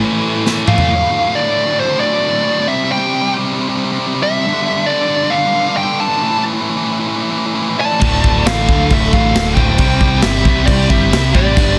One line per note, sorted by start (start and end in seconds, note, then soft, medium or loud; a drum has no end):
0.00 0.66 A2 loud
0.00 0.11 A2 medium
0.00 0.67 E3 loud
0.00 0.66 A3 loud
0.06 0.13 E3 medium
0.11 0.19 A2 medium
0.11 0.21 E3 medium
0.20 0.26 A2 medium
0.20 0.29 E3 medium
0.26 0.34 A2 medium
0.26 0.37 E3 medium
0.35 0.41 A2 medium
0.35 0.44 E3 medium
0.42 0.49 A2 medium
0.42 0.52 E3 medium
0.46 0.57 A2 medium
0.46 snare medium
0.53 0.65 A2 medium
0.53 0.60 E3 medium
0.61 0.68 E3 medium
0.66 0.72 A2 medium
0.66 0.75 E3 medium
0.66 0.88 A3 medium
0.66 1.37 F5 medium
0.66 mid tom medium
0.72 0.79 A2 medium
0.72 0.83 E3 medium
0.78 0.87 A2 medium
0.78 floor tom medium
0.83 0.88 E3 medium
0.88 0.94 D2 medium
0.88 0.96 A2 loud
0.95 1.03 D2 medium
0.95 1.03 A2 medium
1.03 1.10 D2 medium
1.03 1.11 A2 medium
1.11 1.18 D2 medium
1.11 1.19 A2 medium
1.20 1.26 D2 medium
1.20 1.27 A2 medium
1.27 1.34 D2 medium
1.27 1.35 A2 medium
1.35 1.42 D2 medium
1.35 1.42 A2 loud
1.35 1.79 D5 medium
1.42 1.49 D2 medium
1.42 1.51 A2 medium
1.49 1.57 D2 medium
1.49 1.58 A2 medium
1.57 1.65 D2 medium
1.57 1.66 A2 medium
1.66 1.73 D2 medium
1.66 1.73 A2 loud
1.73 1.81 D2 medium
1.73 1.81 A2 medium
1.80 1.88 D2 medium
1.80 1.90 A2 medium
1.80 2.00 C5 loud
1.89 1.96 D2 medium
1.89 1.97 A2 medium
1.96 2.04 D2 medium
1.96 2.05 A2 medium
1.96 2.69 D5 medium
2.05 2.13 D2 medium
2.05 2.12 A2 medium
2.13 2.20 D2 medium
2.13 2.20 A2 medium
2.20 2.27 D2 medium
2.20 2.28 A2 medium
2.28 2.35 D2 medium
2.28 2.35 A2 medium
2.36 2.43 D2 medium
2.36 2.42 A2 medium
2.42 2.51 D2 medium
2.42 2.50 A2 medium
2.51 2.59 D2 medium
2.51 2.58 A2 medium
2.58 2.67 D2 medium
2.58 2.66 A2 medium
2.68 2.75 C3 medium
2.68 2.75 G3 loud
2.68 2.91 E5 loud
2.75 2.83 C3 medium
2.75 2.83 G3 medium
2.84 2.91 C3 medium
2.84 2.91 G3 medium
2.91 2.99 C3 medium
2.91 2.98 G3 medium
2.91 3.32 G5 loud
2.99 3.06 C3 medium
2.99 3.06 G3 medium
3.07 3.14 C3 medium
3.07 3.14 G3 medium
3.14 3.22 C3 medium
3.14 3.21 G3 medium
3.21 3.29 C3 medium
3.21 3.29 G3 medium
3.29 3.37 C3 medium
3.29 3.37 G3 medium
3.38 3.44 C3 medium
3.38 3.46 G3 medium
3.45 3.52 C3 medium
3.45 3.53 G3 medium
3.53 3.58 C3 medium
3.53 3.61 G3 medium
3.59 3.66 C3 medium
3.59 3.69 G3 medium
3.68 3.76 C3 medium
3.68 3.76 G3 medium
3.76 3.84 C3 medium
3.76 3.84 G3 medium
3.84 3.91 C3 medium
3.84 3.92 G3 medium
3.92 3.98 C3 medium
3.92 3.99 G3 medium
3.99 4.06 C3 medium
3.99 4.07 G3 medium
4.07 4.14 C3 medium
4.07 4.14 G3 medium
4.14 4.22 C3 medium
4.14 4.22 G3 medium
4.22 4.29 C3 medium
4.22 4.30 G3 medium
4.22 4.86 E5 medium
4.29 4.37 C3 medium
4.29 4.38 G3 medium
4.38 4.46 C3 medium
4.38 4.46 G3 medium
4.47 4.54 G2 medium
4.47 4.53 D3 medium
4.54 4.61 G2 medium
4.54 4.62 D3 medium
4.62 4.68 G2 medium
4.62 4.70 D3 medium
4.68 4.76 G2 medium
4.68 4.77 D3 medium
4.77 4.86 G2 medium
4.77 4.85 D3 medium
4.85 4.92 G2 medium
4.85 4.93 D3 medium
4.85 5.34 D5 medium
4.93 5.00 G2 medium
4.93 5.01 D3 medium
5.00 5.07 G2 medium
5.00 5.09 D3 medium
5.07 5.15 G2 medium
5.07 5.16 D3 medium
5.16 5.23 G2 medium
5.16 5.23 D3 medium
5.24 5.31 G2 medium
5.24 5.31 D3 medium
5.30 5.38 G2 medium
5.30 5.38 D3 medium
5.30 5.73 F5 loud
5.38 5.46 G2 medium
5.38 5.46 D3 medium
5.46 5.54 G2 medium
5.46 5.54 D3 medium
5.54 5.61 G2 medium
5.54 5.62 D3 medium
5.61 5.69 G2 medium
5.61 5.69 D3 medium
5.69 5.77 G2 medium
5.69 5.77 D3 medium
5.77 5.85 G2 medium
5.77 5.84 D3 medium
5.77 6.01 G5 loud
5.85 5.92 G2 medium
5.85 5.92 D3 medium
5.92 6.00 G2 medium
5.92 6.00 D3 medium
6.00 6.08 G2 medium
6.00 6.09 D3 medium
6.00 6.42 A5 medium
6.08 6.16 G2 medium
6.08 6.17 D3 medium
6.17 6.22 G2 medium
6.17 6.23 D3 medium
6.23 6.30 A2 medium
6.23 6.30 E3 medium
6.30 6.38 A2 medium
6.30 6.38 E3 medium
6.38 6.45 A2 medium
6.38 6.45 E3 medium
6.45 6.53 A2 medium
6.45 6.53 E3 medium
6.53 6.61 A2 medium
6.53 6.61 E3 medium
6.61 6.69 A2 medium
6.61 6.69 E3 medium
6.69 6.77 A2 medium
6.69 6.76 E3 medium
6.76 6.83 A2 medium
6.76 6.84 E3 medium
6.83 6.91 A2 medium
6.83 6.91 E3 medium
6.91 7.00 A2 medium
6.91 6.99 E3 medium
7.00 7.07 A2 medium
7.00 7.07 E3 medium
7.07 7.15 A2 medium
7.07 7.15 E3 medium
7.16 7.23 A2 medium
7.16 7.23 E3 medium
7.23 7.30 A2 medium
7.23 7.31 E3 medium
7.30 7.38 A2 medium
7.30 7.39 E3 medium
7.39 7.45 A2 medium
7.39 7.46 E3 medium
7.46 7.53 A2 medium
7.46 7.54 E3 medium
7.54 7.61 A2 medium
7.54 7.62 E3 medium
7.62 7.69 A2 medium
7.62 7.69 E3 medium
7.69 7.76 A2 medium
7.69 7.77 E3 medium
7.76 7.84 A2 medium
7.76 7.85 E3 medium
7.76 8.41 D5 medium
7.81 7.91 A2 medium
7.81 8.48 A5 loud
7.85 7.93 E3 medium
7.92 7.99 A2 medium
7.92 8.01 E3 medium
7.99 8.43 D1 medium
7.99 8.07 D2 medium
7.99 8.08 A2 medium
7.99 9.55 D3 loud
7.99 kick loud
7.99 crash medium
8.08 8.15 D2 medium
8.08 8.15 A2 medium
8.15 8.22 D2 medium
8.15 8.23 A2 medium
8.22 8.30 D2 medium
8.22 8.32 A2 medium
8.22 kick medium
8.31 8.38 D2 medium
8.31 8.39 A2 medium
8.38 8.46 D2 medium
8.38 8.47 A2 medium
8.46 8.67 A1 loud
8.46 8.54 D2 medium
8.46 8.54 A2 medium
8.46 8.88 A4 medium
8.46 8.91 F5 medium
8.46 snare loud
8.46 crash medium
8.54 8.61 D2 medium
8.54 8.62 A2 medium
8.61 8.68 D2 medium
8.61 8.70 A2 medium
8.68 8.76 D2 medium
8.68 8.89 D2 medium
8.68 8.77 A2 medium
8.68 kick loud
8.77 8.84 D2 medium
8.77 8.85 A2 medium
8.84 8.92 D2 medium
8.84 8.93 A2 medium
8.90 9.11 D1 loud
8.90 8.99 D2 medium
8.90 9.01 A2 medium
8.90 9.11 A4 medium
8.90 9.14 E5 loud
8.90 kick loud
8.90 crash medium
9.00 9.07 D2 medium
9.00 9.09 A2 medium
9.08 9.16 D2 medium
9.08 9.16 A2 medium
9.13 9.33 A1 loud
9.13 9.24 D2 medium
9.13 9.24 A2 medium
9.13 9.55 A4 medium
9.13 9.55 F5 loud
9.13 kick loud
9.24 9.31 D2 medium
9.24 9.32 A2 medium
9.31 9.55 D1 medium
9.31 9.38 D2 medium
9.31 9.39 A2 medium
9.35 9.46 D2 medium
9.35 9.47 A2 medium
9.35 snare loud
9.35 crash medium
9.47 9.54 D2 medium
9.47 9.54 A2 medium
9.55 9.78 D1 medium
9.55 9.61 D2 medium
9.55 9.63 A2 medium
9.55 9.77 D3 medium
9.55 10.18 C5 medium
9.55 10.23 G5 loud
9.55 kick medium
9.62 9.69 D2 medium
9.62 9.70 A2 medium
9.70 9.78 D2 medium
9.70 9.78 A2 medium
9.78 10.21 C2 loud
9.78 9.86 C3 medium
9.78 9.87 G3 loud
9.78 11.32 C4 loud
9.78 kick loud
9.78 crash medium
9.86 9.94 C3 medium
9.86 9.94 G3 medium
9.94 10.01 C3 medium
9.94 10.01 G3 medium
10.01 10.09 C3 medium
10.01 10.09 G3 medium
10.01 kick medium
10.10 10.17 C3 medium
10.10 10.17 G3 medium
10.17 10.24 C3 medium
10.17 10.25 G3 medium
10.22 10.44 G1 medium
10.22 10.33 C3 medium
10.22 10.32 G3 medium
10.22 10.64 G4 medium
10.22 10.69 E5 medium
10.22 snare loud
10.22 crash medium
10.32 10.40 C3 medium
10.32 10.40 G3 medium
10.40 10.48 C3 medium
10.40 10.48 G3 medium
10.45 10.66 C2 medium
10.45 10.55 C3 medium
10.45 10.55 G3 medium
10.45 kick medium
10.55 10.62 C3 medium
10.55 10.63 G3 medium
10.63 10.71 C3 medium
10.63 10.71 G3 medium
10.63 10.89 D5 loud
10.67 10.88 C2 medium
10.67 10.78 C3 medium
10.67 10.88 G4 medium
10.67 kick loud
10.67 crash medium
10.72 10.79 G3 medium
10.78 10.86 C3 medium
10.78 10.87 G3 medium
10.87 11.11 G1 loud
10.87 10.93 C3 medium
10.87 10.93 G3 medium
10.87 11.30 G4 medium
10.87 11.35 E5 loud
10.87 kick medium
10.94 11.01 C3 medium
10.94 11.01 G3 medium
11.02 11.09 C3 medium
11.02 11.10 G3 medium
11.10 11.33 C2 medium
11.10 11.17 C3 medium
11.10 11.17 G3 medium
11.10 snare loud
11.10 crash medium
11.18 11.24 C3 medium
11.18 11.25 G3 medium
11.24 11.32 C3 medium
11.24 11.33 G3 medium
11.33 11.55 A1 loud
11.33 11.40 C3 medium
11.33 11.41 G3 medium
11.33 11.54 C4 medium
11.33 11.79 G4 medium
11.33 11.79 D5 medium
11.33 kick medium
11.40 11.47 C3 medium
11.40 11.47 G3 medium
11.48 11.55 C3 medium
11.48 11.55 G3 medium
11.57 11.79 G1 loud
11.57 11.63 G2 medium
11.57 11.64 D3 medium
11.57 11.79 G3 loud
11.57 kick loud
11.57 crash medium
11.63 11.71 G2 medium
11.63 11.72 D3 medium
11.72 11.79 G2 medium
11.72 11.79 D3 medium